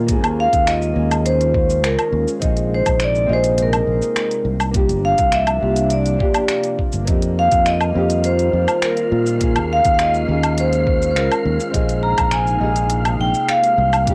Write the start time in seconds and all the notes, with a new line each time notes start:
Already playing: A#2 D#3 F4
0.06 G#3 A#3 C#4 F4, kick, closed hi-hat, cabasa
0.12 G#4
0.23 D#2, closed hi-hat, cabasa, low woodblock
0.40 F5
0.53 D#2, kick, closed hi-hat, cabasa
0.67 D#5, finger snap, closed hi-hat, cabasa
0.82 cabasa
0.93 D#2 A#3 C#4 F4
0.99 G#4
1.11 closed hi-hat, cabasa, low woodblock
1.26 C5, closed hi-hat, cabasa
1.41 closed hi-hat, cabasa
1.54 kick
1.70 cabasa
1.83 C#2 A#4, finger snap, closed hi-hat, cabasa
1.99 closed hi-hat, cabasa, low woodblock
2.12 D#2
2.28 cabasa
2.39 A#1 C3 A#3 C4 D#4 F4, kick, closed hi-hat, cabasa
2.44 G#4
2.57 closed hi-hat, cabasa
2.74 C5
2.86 A#1, kick, closed hi-hat, cabasa, low woodblock
3.00 finger snap, closed hi-hat, cabasa
3.04 D5
3.15 cabasa
3.26 A#1 C4 D#4 F4
3.32 G#4 C5
3.44 closed hi-hat, cabasa
3.58 closed hi-hat, cabasa
3.63 A#4
3.73 closed hi-hat, cabasa, low woodblock
3.87 A#1
4.02 cabasa
4.16 finger snap, closed hi-hat, cabasa
4.31 closed hi-hat, cabasa
4.45 C2 C3 F3 A#3 D4
4.60 cabasa, low woodblock
4.71 A#3 D4 F4, kick, closed hi-hat, cabasa
4.76 G4
4.89 G1, closed hi-hat, cabasa
5.05 F5
5.18 C2, kick, closed hi-hat, cabasa
5.32 E5, finger snap, closed hi-hat, cabasa
5.47 closed hi-hat, cabasa, low woodblock
5.60 C2 A#3 D4 F4 G4
5.76 closed hi-hat, cabasa
5.90 D5, closed hi-hat, cabasa
6.06 closed hi-hat, cabasa
6.19 A#3 D4 F4 G4, kick
6.33 A#3 D4 F4, closed hi-hat, cabasa, low woodblock
6.38 G4
6.48 finger snap, closed hi-hat, cabasa
6.64 closed hi-hat, cabasa
6.79 kick
6.92 G1, cabasa
7.05 F2 D#3 G3 A#3 C4 D#4 F4 F5 F6, kick, closed hi-hat, cabasa
7.09 G4
7.22 closed hi-hat, cabasa
7.39 F5
7.51 F2, kick, closed hi-hat, cabasa
7.66 D#5, finger snap, closed hi-hat, cabasa
7.81 cabasa, low woodblock
7.92 F2 A#3 C4 D#4
7.97 G4
8.10 closed hi-hat, cabasa
8.24 C5, closed hi-hat, cabasa
8.39 closed hi-hat, cabasa
8.53 F2
8.68 cabasa, low woodblock
8.82 A#4, finger snap, closed hi-hat, cabasa
8.97 closed hi-hat, cabasa
9.12 A#2
9.26 cabasa
9.38 G#3 A#3 C#4 F4, kick, closed hi-hat, cabasa
9.43 G#4
9.56 D#2, closed hi-hat, cabasa, low woodblock
9.73 F5
9.85 D#2, kick, closed hi-hat, cabasa
9.94 F5
9.99 D#5, finger snap, closed hi-hat, cabasa
10.14 cabasa
10.25 D#2 A#3 C#4 F4
10.30 G#4
10.43 closed hi-hat, cabasa, low woodblock
10.58 C5, closed hi-hat, cabasa
10.73 closed hi-hat, cabasa
10.87 kick
11.02 cabasa
11.11 C5
11.16 C#2 A#4, finger snap, closed hi-hat, cabasa
11.32 closed hi-hat, cabasa, low woodblock
11.45 D#2
11.60 cabasa
11.70 A#1 C3 A#3 C4 D#4 F4, kick, closed hi-hat
11.74 G#4, cabasa
11.89 closed hi-hat, cabasa
12.03 A#5
12.18 A#1, kick, closed hi-hat, cabasa, low woodblock
12.31 G#5, finger snap, closed hi-hat, cabasa
12.47 cabasa
12.58 A#1 C4 D#4 F4
12.63 G#4
12.76 closed hi-hat, cabasa
12.90 closed hi-hat, cabasa
13.05 closed hi-hat, cabasa, low woodblock
13.20 A#1 G5
13.34 cabasa
13.49 F5, finger snap, closed hi-hat, cabasa
13.63 closed hi-hat, cabasa
13.78 C2 F3 D4
13.93 cabasa, low woodblock
14.05 A#3 D4 F4, kick, closed hi-hat, cabasa
14.10 G4